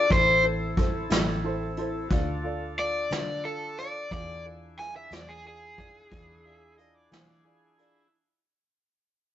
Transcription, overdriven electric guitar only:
0.00 0.11 D5 medium
0.12 0.44 C5 medium
2.79 3.43 D5 medium
3.45 3.77 A4 medium
3.79 4.11 D5 medium
4.12 4.44 D5 medium
4.79 4.95 G#5 medium
4.96 5.13 E5 medium
5.13 5.28 D5 medium
5.29 5.45 G#4 medium
5.47 6.75 G#4 medium

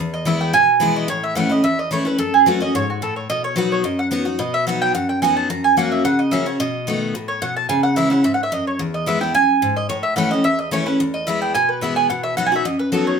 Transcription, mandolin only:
0.14 0.26 D#5 loud
0.27 0.40 E5 medium
0.41 0.53 G5 medium
0.54 0.93 G#5 loud
0.96 1.09 D#5 medium
1.10 1.23 C#5 medium
1.24 1.36 E5 medium
1.37 1.50 F#5 loud
1.51 1.64 D#5 medium
1.64 1.78 E5 medium
1.79 1.91 D#5 medium
1.92 2.06 C#5 medium
2.06 2.19 B4 medium
2.19 2.33 A4 medium
2.34 2.46 G#4 medium
2.48 2.61 B4 medium
2.62 2.74 D#5 loud
2.75 2.89 C#5 medium
2.90 3.02 F#4 medium
3.03 3.16 A4 medium
3.16 3.29 C#5 medium
3.30 3.43 D#5 medium
3.44 3.57 C#5 loud
3.58 3.71 B4 medium
3.72 3.84 C#5 medium
3.85 3.98 D#5 medium
3.99 4.07 F#5 medium
4.40 4.53 D#5 medium
4.54 4.66 E5 loud
4.67 4.81 F#5 medium
4.82 4.94 G5 loud
4.95 5.08 F#5 medium
5.09 5.22 G5 medium
5.22 5.36 G#5 medium
5.37 5.49 A5 loud
5.50 5.64 A#5 loud
5.64 5.77 G#5 loud
5.78 5.91 F#5 medium
5.92 6.04 E5 medium
6.05 6.18 F#5 loud
6.19 6.32 D#5 medium
6.32 6.46 E5 medium
6.47 6.59 C#5 medium
6.60 6.99 D#5 medium
7.28 7.41 C#5 medium
7.42 7.56 F#5 loud
7.57 7.69 A5 loud
7.69 7.83 G#5 medium
7.83 7.96 F#5 loud
7.97 8.11 E5 medium
8.11 8.24 F#5 medium
8.25 8.34 E5 medium
8.34 8.43 F#5 medium
8.43 8.52 E5 medium
8.53 8.66 D#5 medium
8.67 8.80 C#5 medium
8.94 9.07 D#5 loud
9.08 9.21 E5 medium
9.21 9.34 G5 medium
9.35 9.74 G#5 loud
9.77 9.89 D#5 medium
9.89 10.03 C#5 medium
10.03 10.16 E5 medium
10.16 10.31 F#5 loud
10.31 10.44 D#5 medium
10.45 10.58 E5 loud
10.59 10.72 D#5 medium
10.72 10.86 C#5 medium
10.87 10.99 B4 loud
11.14 11.27 D#5 medium
11.27 11.41 E5 medium
11.42 11.54 G5 medium
11.54 11.68 G#5 loud
11.69 11.82 B4 medium
11.82 11.96 E5 medium
11.96 12.09 G#5 loud
12.10 12.23 F#5 medium
12.24 12.37 E5 loud
12.37 12.46 F#5 medium
12.46 12.55 G#5 loud
12.56 12.65 E5 medium
12.65 12.79 D#5 medium
12.79 12.92 B4 medium
12.92 13.06 A4 medium
13.07 13.20 C#5 medium

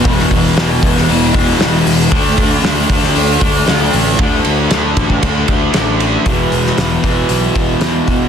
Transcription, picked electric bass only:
0.05 0.26 E1 loud
0.32 0.53 E1 medium
0.56 0.78 E1 medium
0.83 1.04 E1 medium
1.10 1.30 E1 loud
1.35 1.56 E1 medium
1.61 1.82 E1 medium
1.86 2.07 E1 medium
2.12 2.33 D2 medium
2.38 2.59 D2 medium
2.63 2.85 D2 medium
2.89 3.11 D2 medium
3.15 3.37 D2 medium
3.41 3.62 D2 medium
3.68 3.89 D2 medium
3.94 4.15 A1 medium
4.19 4.40 D2 loud
4.46 4.66 D2 medium
4.72 4.92 D2 medium
4.97 5.17 A1 medium
5.23 5.43 D2 loud
5.49 5.69 D2 medium
5.74 6.16 A1 medium
6.26 6.44 E1 medium
6.52 6.70 E1 medium
6.78 6.96 E1 medium
7.04 7.22 E1 medium
7.30 7.48 B1 medium
7.56 7.74 E1 medium
7.82 8.00 E2 medium
8.08 8.26 E1 medium

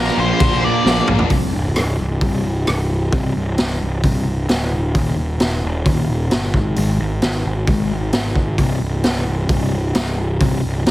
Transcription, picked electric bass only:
0.17 0.31 A#1 medium
0.41 0.68 A#1 medium
0.85 0.99 A#1 medium
1.09 1.23 A#1 medium
1.30 1.52 C1 medium
1.54 1.75 C1 medium
1.76 1.98 C1 medium
1.99 2.20 C1 medium
2.21 2.65 C1 medium
2.67 3.10 C1 medium
3.13 3.34 C1 medium
3.35 3.57 C1 medium
3.58 3.80 C1 medium
3.81 4.03 C1 medium
4.04 4.47 C1 medium
4.49 4.92 D1 medium
4.95 5.17 D#1 medium
5.17 5.39 D#1 medium
5.41 5.62 D#1 medium
5.63 5.85 D#1 medium
5.86 6.29 D#1 medium
6.31 6.53 G1 medium
6.54 6.76 G#1 medium
6.77 6.99 G#1 medium
7.00 7.21 G#1 medium
7.22 7.44 G#1 medium
7.45 7.67 G#1 medium
7.68 8.11 G#1 medium
8.13 8.56 G#1 medium
8.59 8.80 C1 medium
8.81 9.03 C1 medium
9.04 9.26 C1 medium
9.27 9.49 C1 medium
9.49 9.93 C1 medium
9.95 10.39 C1 medium
10.41 10.63 C1 medium
10.64 10.85 C1 medium
10.86 10.91 C1 medium

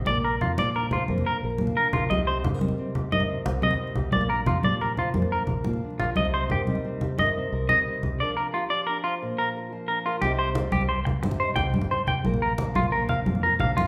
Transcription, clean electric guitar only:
0.07 0.17 D5 medium
0.25 0.34 A#4 medium
0.41 0.51 F4 medium
0.59 0.69 D5 medium
0.76 0.86 A#4 medium
0.93 1.03 F4 medium
1.26 1.36 A#4 medium
1.77 1.87 A#4 medium
1.93 2.03 F4 medium
2.10 2.20 D#5 medium
2.27 2.37 C5 medium
3.12 3.22 D#5 medium
3.63 3.73 D#5 medium
4.13 4.23 D5 medium
4.30 4.40 A#4 medium
4.47 4.57 F4 medium
4.64 4.74 D5 medium
4.81 4.91 A#4 medium
4.99 5.08 F4 medium
5.32 5.42 A#4 medium
6.00 6.09 F4 medium
6.17 6.26 D#5 medium
6.34 6.44 C5 medium
6.52 6.61 G4 medium
7.19 7.29 D#5 medium
7.69 7.79 D#5 medium
8.20 8.30 D5 medium
8.37 8.46 A#4 medium
8.54 8.64 F4 medium
8.70 8.80 D5 medium
8.87 8.97 A#4 medium
9.04 9.14 F4 medium
9.38 9.48 A#4 medium
9.88 9.98 A#4 medium
10.06 10.16 F4 medium
10.21 10.32 G4 medium
10.39 10.49 C5 medium
10.72 10.82 G4 medium
10.89 10.99 C5 medium
11.05 muted clean electric guitar stroke medium
11.23 muted clean electric guitar stroke medium
11.40 11.50 C5 medium
11.56 11.66 G5 medium
11.91 12.01 C5 medium
12.08 12.18 G5 medium
12.42 12.52 A#4 medium
12.76 12.86 F4 medium
12.92 13.02 A#4 medium
13.09 13.19 F5 medium
13.43 13.53 A#4 medium
13.60 13.70 F5 medium
13.77 13.87 F4 medium

